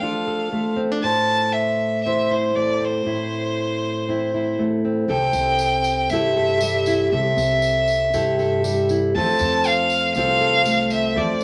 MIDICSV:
0, 0, Header, 1, 5, 480
1, 0, Start_track
1, 0, Key_signature, 0, "major"
1, 0, Tempo, 507185
1, 973, Time_signature, 4, 2, 24, 8
1, 10825, End_track
2, 0, Start_track
2, 0, Title_t, "Fiddle"
2, 0, Program_c, 0, 110
2, 0, Note_on_c, 0, 77, 57
2, 725, Note_off_c, 0, 77, 0
2, 970, Note_on_c, 0, 81, 88
2, 1444, Note_on_c, 0, 76, 73
2, 1458, Note_off_c, 0, 81, 0
2, 1920, Note_off_c, 0, 76, 0
2, 1926, Note_on_c, 0, 76, 75
2, 2191, Note_on_c, 0, 72, 65
2, 2205, Note_off_c, 0, 76, 0
2, 2418, Note_on_c, 0, 74, 70
2, 2433, Note_off_c, 0, 72, 0
2, 2693, Note_on_c, 0, 72, 70
2, 2707, Note_off_c, 0, 74, 0
2, 4359, Note_off_c, 0, 72, 0
2, 4827, Note_on_c, 0, 79, 86
2, 5769, Note_on_c, 0, 76, 86
2, 5783, Note_off_c, 0, 79, 0
2, 6729, Note_off_c, 0, 76, 0
2, 6735, Note_on_c, 0, 76, 83
2, 8378, Note_off_c, 0, 76, 0
2, 8666, Note_on_c, 0, 81, 94
2, 9147, Note_on_c, 0, 77, 87
2, 9161, Note_off_c, 0, 81, 0
2, 9596, Note_off_c, 0, 77, 0
2, 9602, Note_on_c, 0, 77, 93
2, 10290, Note_off_c, 0, 77, 0
2, 10338, Note_on_c, 0, 76, 76
2, 10576, Note_on_c, 0, 74, 73
2, 10590, Note_off_c, 0, 76, 0
2, 10825, Note_off_c, 0, 74, 0
2, 10825, End_track
3, 0, Start_track
3, 0, Title_t, "Steel-string acoustic guitar"
3, 0, Program_c, 1, 25
3, 0, Note_on_c, 1, 53, 65
3, 0, Note_on_c, 1, 57, 52
3, 17, Note_on_c, 1, 62, 53
3, 28, Note_on_c, 1, 65, 52
3, 33, Note_on_c, 1, 69, 53
3, 256, Note_off_c, 1, 69, 0
3, 260, Note_on_c, 1, 69, 56
3, 494, Note_off_c, 1, 57, 0
3, 498, Note_on_c, 1, 57, 57
3, 720, Note_off_c, 1, 62, 0
3, 724, Note_on_c, 1, 60, 51
3, 867, Note_off_c, 1, 60, 0
3, 867, Note_on_c, 1, 62, 38
3, 945, Note_off_c, 1, 53, 0
3, 953, Note_off_c, 1, 65, 0
3, 980, Note_off_c, 1, 62, 0
3, 980, Note_off_c, 1, 69, 0
3, 981, Note_on_c, 1, 45, 64
3, 984, Note_on_c, 1, 72, 56
3, 1946, Note_on_c, 1, 60, 54
3, 1950, Note_on_c, 1, 64, 55
3, 1954, Note_off_c, 1, 72, 0
3, 1958, Note_on_c, 1, 72, 55
3, 2185, Note_off_c, 1, 64, 0
3, 2189, Note_on_c, 1, 64, 48
3, 2414, Note_off_c, 1, 57, 0
3, 2418, Note_on_c, 1, 57, 50
3, 2647, Note_off_c, 1, 60, 0
3, 2651, Note_on_c, 1, 60, 50
3, 2881, Note_off_c, 1, 45, 0
3, 2892, Note_on_c, 1, 45, 56
3, 2898, Note_off_c, 1, 64, 0
3, 2902, Note_on_c, 1, 64, 51
3, 3857, Note_off_c, 1, 60, 0
3, 3862, Note_off_c, 1, 64, 0
3, 3868, Note_on_c, 1, 60, 53
3, 3877, Note_on_c, 1, 64, 51
3, 4099, Note_off_c, 1, 64, 0
3, 4110, Note_on_c, 1, 64, 54
3, 4342, Note_off_c, 1, 57, 0
3, 4346, Note_on_c, 1, 57, 53
3, 4576, Note_off_c, 1, 60, 0
3, 4588, Note_on_c, 1, 60, 51
3, 4795, Note_off_c, 1, 57, 0
3, 4816, Note_off_c, 1, 45, 0
3, 4820, Note_on_c, 1, 48, 61
3, 4821, Note_off_c, 1, 72, 0
3, 4825, Note_on_c, 1, 69, 55
3, 5786, Note_off_c, 1, 64, 0
3, 5794, Note_off_c, 1, 60, 0
3, 5797, Note_on_c, 1, 64, 57
3, 5802, Note_on_c, 1, 67, 59
3, 5804, Note_off_c, 1, 69, 0
3, 5807, Note_on_c, 1, 69, 63
3, 6019, Note_off_c, 1, 69, 0
3, 6022, Note_on_c, 1, 69, 66
3, 6267, Note_on_c, 1, 55, 56
3, 6494, Note_off_c, 1, 64, 0
3, 6506, Note_on_c, 1, 64, 62
3, 6711, Note_off_c, 1, 48, 0
3, 6714, Note_off_c, 1, 64, 0
3, 6722, Note_off_c, 1, 67, 0
3, 6743, Note_off_c, 1, 69, 0
3, 6743, Note_on_c, 1, 48, 69
3, 6746, Note_on_c, 1, 69, 58
3, 7699, Note_on_c, 1, 64, 59
3, 7705, Note_on_c, 1, 67, 60
3, 7706, Note_off_c, 1, 69, 0
3, 7710, Note_on_c, 1, 69, 63
3, 7941, Note_off_c, 1, 69, 0
3, 7945, Note_on_c, 1, 69, 66
3, 8165, Note_off_c, 1, 55, 0
3, 8176, Note_on_c, 1, 55, 60
3, 8418, Note_off_c, 1, 64, 0
3, 8430, Note_on_c, 1, 64, 55
3, 8631, Note_off_c, 1, 48, 0
3, 8632, Note_off_c, 1, 67, 0
3, 8635, Note_off_c, 1, 64, 0
3, 8657, Note_off_c, 1, 55, 0
3, 8663, Note_on_c, 1, 53, 64
3, 8669, Note_on_c, 1, 57, 52
3, 8681, Note_on_c, 1, 60, 51
3, 8685, Note_on_c, 1, 65, 60
3, 8687, Note_off_c, 1, 69, 0
3, 8690, Note_on_c, 1, 69, 56
3, 9621, Note_off_c, 1, 60, 0
3, 9625, Note_on_c, 1, 60, 61
3, 9629, Note_off_c, 1, 65, 0
3, 9633, Note_on_c, 1, 65, 60
3, 9637, Note_off_c, 1, 69, 0
3, 9640, Note_on_c, 1, 69, 66
3, 9849, Note_off_c, 1, 69, 0
3, 9852, Note_on_c, 1, 69, 64
3, 10082, Note_off_c, 1, 57, 0
3, 10086, Note_on_c, 1, 57, 54
3, 10322, Note_off_c, 1, 60, 0
3, 10334, Note_on_c, 1, 60, 59
3, 10564, Note_off_c, 1, 53, 0
3, 10568, Note_on_c, 1, 53, 71
3, 10572, Note_off_c, 1, 69, 0
3, 10576, Note_on_c, 1, 69, 55
3, 10825, Note_off_c, 1, 53, 0
3, 10825, Note_off_c, 1, 57, 0
3, 10825, Note_off_c, 1, 60, 0
3, 10825, Note_off_c, 1, 65, 0
3, 10825, Note_off_c, 1, 69, 0
3, 10825, End_track
4, 0, Start_track
4, 0, Title_t, "Upright bass"
4, 0, Program_c, 2, 32
4, 4812, Note_on_c, 2, 36, 82
4, 5039, Note_off_c, 2, 36, 0
4, 5045, Note_on_c, 2, 36, 78
4, 5737, Note_off_c, 2, 36, 0
4, 5781, Note_on_c, 2, 43, 69
4, 6703, Note_off_c, 2, 43, 0
4, 6742, Note_on_c, 2, 36, 94
4, 6969, Note_off_c, 2, 36, 0
4, 6974, Note_on_c, 2, 36, 80
4, 7660, Note_off_c, 2, 36, 0
4, 7705, Note_on_c, 2, 43, 82
4, 8623, Note_off_c, 2, 43, 0
4, 8660, Note_on_c, 2, 41, 84
4, 8887, Note_off_c, 2, 41, 0
4, 8898, Note_on_c, 2, 41, 81
4, 9581, Note_off_c, 2, 41, 0
4, 9611, Note_on_c, 2, 36, 79
4, 10534, Note_off_c, 2, 36, 0
4, 10562, Note_on_c, 2, 41, 92
4, 10796, Note_off_c, 2, 41, 0
4, 10825, End_track
5, 0, Start_track
5, 0, Title_t, "Drums"
5, 5046, Note_on_c, 9, 54, 66
5, 5140, Note_off_c, 9, 54, 0
5, 5287, Note_on_c, 9, 54, 73
5, 5382, Note_off_c, 9, 54, 0
5, 5527, Note_on_c, 9, 54, 68
5, 5622, Note_off_c, 9, 54, 0
5, 5768, Note_on_c, 9, 54, 62
5, 5862, Note_off_c, 9, 54, 0
5, 6251, Note_on_c, 9, 54, 84
5, 6346, Note_off_c, 9, 54, 0
5, 6491, Note_on_c, 9, 54, 72
5, 6586, Note_off_c, 9, 54, 0
5, 6983, Note_on_c, 9, 54, 62
5, 7078, Note_off_c, 9, 54, 0
5, 7213, Note_on_c, 9, 54, 64
5, 7307, Note_off_c, 9, 54, 0
5, 7453, Note_on_c, 9, 54, 62
5, 7548, Note_off_c, 9, 54, 0
5, 7700, Note_on_c, 9, 54, 63
5, 7794, Note_off_c, 9, 54, 0
5, 7940, Note_on_c, 9, 54, 23
5, 8034, Note_off_c, 9, 54, 0
5, 8178, Note_on_c, 9, 54, 75
5, 8273, Note_off_c, 9, 54, 0
5, 8415, Note_on_c, 9, 54, 58
5, 8510, Note_off_c, 9, 54, 0
5, 8886, Note_on_c, 9, 54, 62
5, 8980, Note_off_c, 9, 54, 0
5, 9123, Note_on_c, 9, 54, 62
5, 9218, Note_off_c, 9, 54, 0
5, 9367, Note_on_c, 9, 54, 63
5, 9462, Note_off_c, 9, 54, 0
5, 9603, Note_on_c, 9, 54, 56
5, 9697, Note_off_c, 9, 54, 0
5, 9848, Note_on_c, 9, 54, 22
5, 9943, Note_off_c, 9, 54, 0
5, 10083, Note_on_c, 9, 54, 72
5, 10178, Note_off_c, 9, 54, 0
5, 10318, Note_on_c, 9, 54, 64
5, 10413, Note_off_c, 9, 54, 0
5, 10795, Note_on_c, 9, 54, 55
5, 10825, Note_off_c, 9, 54, 0
5, 10825, End_track
0, 0, End_of_file